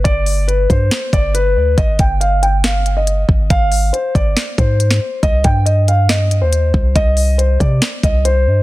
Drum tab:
HH |x-o-x-x-x-x-x---|x-x-x-x-x-x-x---|x-o-x-x-x-x-x---|x-x-x-x-x-x-x---|
SD |--------o-------|--------o-------|--------o----o--|--------o-------|
BD |o-----o---o-----|o-o-----------o-|o-----o---o-----|o-o-----------o-|

HH |x-o-x-x-x-x-x---|
SD |--------o-------|
BD |o-----o---o-----|